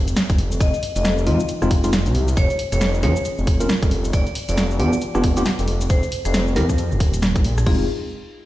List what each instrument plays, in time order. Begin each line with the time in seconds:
Already playing: detuned saw bass F1
0.08 closed hi-hat, cabasa
0.16 snare, cabasa
0.30 detuned saw bass F1, kick, closed hi-hat, cabasa
0.39 open hi-hat
0.52 closed hi-hat, cabasa
0.60 detuned saw bass F1, vibraphone D#5, kick, closed hi-hat, cabasa
0.74 closed hi-hat, cabasa
0.83 open hi-hat
0.96 detuned saw bass F1, vibraphone D#5, closed hi-hat, cabasa
1.05 snare, cabasa
1.18 cabasa
1.27 detuned saw bass F2, tine electric piano G#3 C4 D#4 F4, vibraphone D#5, open hi-hat
1.40 cabasa
1.49 closed hi-hat, cabasa
1.62 detuned saw bass F1, tine electric piano G#3 C4 D#4 F4, cross-stick, cabasa
1.71 kick, open hi-hat
1.84 tine electric piano G#3 C4 D#4 F4, closed hi-hat, cabasa
1.93 snare, cabasa
2.06 detuned saw bass C2, closed hi-hat, cabasa
2.15 open hi-hat
2.28 closed hi-hat, cabasa
2.37 detuned saw bass F1, vibraphone C#5, kick, closed hi-hat, cabasa
2.50 closed hi-hat, cabasa
2.59 open hi-hat
2.72 detuned saw bass F1, vibraphone C#5, cross-stick, closed hi-hat, cabasa
2.81 snare, cabasa
2.94 cabasa
3.03 detuned saw bass F2, tine electric piano A#3 C#4 F4 G#4, vibraphone C#5, snare, open hi-hat
3.16 cabasa
3.25 closed hi-hat, cabasa
3.38 detuned saw bass F1, cabasa
3.47 kick, open hi-hat
3.60 tine electric piano A#3 C#4 F4 A#4, closed hi-hat, cabasa
3.69 snare, cabasa
3.83 detuned saw bass F1, kick, closed hi-hat, cabasa
3.91 open hi-hat
4.05 closed hi-hat, cabasa
4.13 detuned saw bass F1, vibraphone D5, kick, closed hi-hat, cabasa
4.27 closed hi-hat, cabasa
4.35 open hi-hat
4.49 detuned saw bass F1, vibraphone D5, closed hi-hat, cabasa
4.58 snare, cabasa
4.71 cabasa
4.80 detuned saw bass F2, tine electric piano B3 D4 F4 G4, vibraphone D5, open hi-hat
4.93 cabasa
5.02 closed hi-hat, cabasa
5.15 detuned saw bass F1, tine electric piano B3 D4 F4 G4, cross-stick, cabasa
5.24 kick, open hi-hat
5.37 tine electric piano B3 D4 F4 G4, closed hi-hat, cabasa
5.46 snare, cabasa
5.59 detuned saw bass F1, closed hi-hat, cabasa
5.68 open hi-hat
5.81 closed hi-hat, cabasa
5.90 detuned saw bass F1, vibraphone C5, kick, closed hi-hat, cabasa
6.03 closed hi-hat, cabasa
6.12 open hi-hat
6.25 detuned saw bass F1, vibraphone C5, cross-stick, closed hi-hat, cabasa
6.34 snare, cabasa
6.47 cabasa
6.56 detuned saw bass F2, tine electric piano C4 E4 G4 A#4, vibraphone A#4, snare, open hi-hat
6.69 kick, cabasa
6.78 closed hi-hat, cabasa
6.91 detuned saw bass D#1, cabasa
7.00 kick, open hi-hat
7.14 closed hi-hat, cabasa
7.22 snare, cabasa
7.36 detuned saw bass A#1, kick, closed hi-hat, cabasa
7.44 open hi-hat
7.58 cross-stick, closed hi-hat, cabasa
7.66 detuned saw bass F1, tine electric piano G#3 C4 D#4 F4, vibraphone G#4, kick, crash